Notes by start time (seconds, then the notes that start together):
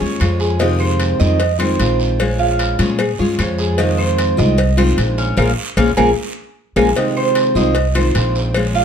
0.00 D#2 G#3 C#4 F4 C#5
0.20 F2 F3 G#3 C#4 F4, cowbell, short guiro, claves
0.40 G#4, short guiro
0.59 C3 D#3 G#3 C4 D#4 F4, cowbell, long guiro
0.80 C5, claves
1.00 cowbell, short guiro
1.20 F2 D#3 G#3 C4 F4 D#5, short guiro
1.40 muted steel-string acoustic guitar stroke, cowbell, long guiro
1.59 D#3 G#3 C4 F4 C5, cowbell, claves
1.79 A#1 D#3 G#3 C4 F4, cowbell, short guiro
2.00 short guiro
2.19 F3 G#3 C#4 F4, cowbell, long guiro, claves
2.39 F4
2.59 cowbell, short guiro
2.79 A#2 G#3 C#4 F4 C#5, cowbell, short guiro
2.99 G#4, muted steel-string acoustic guitar stroke, cowbell, long guiro, claves
3.19 G2 G#3 C#4 F4 C#5
3.39 F2 F3 G#3 C#4 F4, cowbell, short guiro, claves
3.58 G#4, short guiro
3.78 C3 D#3 G#3 C4 D#4 F4, cowbell, long guiro
3.98 C5, claves
4.18 cowbell, short guiro
4.37 C2 D#3 G#3 C4 F4 D#5, short guiro
4.58 muted steel-string acoustic guitar stroke, cowbell, long guiro
4.77 D#3 G#3 C4 F4 C5, cowbell, claves
4.98 A#1 D#3 G#3 C4 F4, cowbell, short guiro
5.18 C#4, short guiro
5.37 A#1 G#3 A#3 C#4 F4 G#4 A#4, cowbell, long guiro, claves
5.77 A#1 G#3 A#3 C#4 F4 G#4 A#4, cowbell, long guiro, claves
5.97 A#1 G#3 A#3 C#4 F4 G#4 A#4, cowbell, long guiro, claves
6.76 A#1 G#3 A#3 C#4 F4 G#4 A#4, cowbell, long guiro, claves
6.96 C3 D#3 G#3 C4 D#4 F4, cowbell, long guiro
7.17 C5, claves
7.35 cowbell, short guiro
7.55 C2 D#3 G#3 C4 F4 D#5, short guiro
7.75 muted steel-string acoustic guitar stroke, cowbell, long guiro
7.95 D#3 G#3 C4 F4 C5, cowbell, claves
8.14 A#1 D#3 G#3 C4 F4, cowbell, short guiro
8.35 short guiro
8.54 F3 G#3 C#4 F4, cowbell, long guiro, claves
8.75 F4